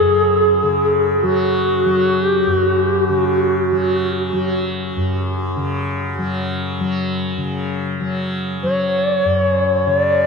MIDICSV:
0, 0, Header, 1, 3, 480
1, 0, Start_track
1, 0, Tempo, 500000
1, 9854, End_track
2, 0, Start_track
2, 0, Title_t, "Native American-style wooden flute"
2, 0, Program_c, 0, 77
2, 0, Note_on_c, 0, 68, 81
2, 906, Note_off_c, 0, 68, 0
2, 1171, Note_on_c, 0, 66, 66
2, 2160, Note_off_c, 0, 66, 0
2, 2160, Note_on_c, 0, 67, 66
2, 2419, Note_off_c, 0, 67, 0
2, 2419, Note_on_c, 0, 66, 66
2, 2717, Note_off_c, 0, 66, 0
2, 2717, Note_on_c, 0, 67, 66
2, 2976, Note_off_c, 0, 67, 0
2, 2976, Note_on_c, 0, 66, 66
2, 3954, Note_off_c, 0, 66, 0
2, 8286, Note_on_c, 0, 73, 80
2, 9483, Note_on_c, 0, 74, 77
2, 9497, Note_off_c, 0, 73, 0
2, 9854, Note_off_c, 0, 74, 0
2, 9854, End_track
3, 0, Start_track
3, 0, Title_t, "Tanpura"
3, 0, Program_c, 1, 104
3, 0, Note_on_c, 1, 42, 47
3, 0, Note_on_c, 1, 49, 49
3, 0, Note_on_c, 1, 54, 45
3, 599, Note_off_c, 1, 49, 0
3, 603, Note_on_c, 1, 49, 49
3, 1183, Note_off_c, 1, 54, 0
3, 1183, Note_on_c, 1, 54, 50
3, 1783, Note_off_c, 1, 54, 0
3, 1783, Note_on_c, 1, 54, 51
3, 2365, Note_off_c, 1, 42, 0
3, 2369, Note_on_c, 1, 42, 49
3, 2966, Note_off_c, 1, 49, 0
3, 2970, Note_on_c, 1, 49, 53
3, 3572, Note_off_c, 1, 54, 0
3, 3572, Note_on_c, 1, 54, 51
3, 4154, Note_off_c, 1, 54, 0
3, 4154, Note_on_c, 1, 54, 52
3, 4760, Note_off_c, 1, 42, 0
3, 4764, Note_on_c, 1, 42, 53
3, 5336, Note_off_c, 1, 49, 0
3, 5340, Note_on_c, 1, 49, 56
3, 5938, Note_off_c, 1, 54, 0
3, 5938, Note_on_c, 1, 54, 50
3, 6533, Note_off_c, 1, 54, 0
3, 6533, Note_on_c, 1, 54, 55
3, 7080, Note_off_c, 1, 49, 0
3, 7083, Note_on_c, 1, 49, 51
3, 7686, Note_off_c, 1, 54, 0
3, 7686, Note_on_c, 1, 54, 49
3, 8290, Note_off_c, 1, 54, 0
3, 8290, Note_on_c, 1, 54, 50
3, 8876, Note_off_c, 1, 42, 0
3, 8880, Note_on_c, 1, 42, 46
3, 9469, Note_off_c, 1, 49, 0
3, 9473, Note_on_c, 1, 49, 48
3, 9854, Note_off_c, 1, 42, 0
3, 9854, Note_off_c, 1, 49, 0
3, 9854, Note_off_c, 1, 54, 0
3, 9854, End_track
0, 0, End_of_file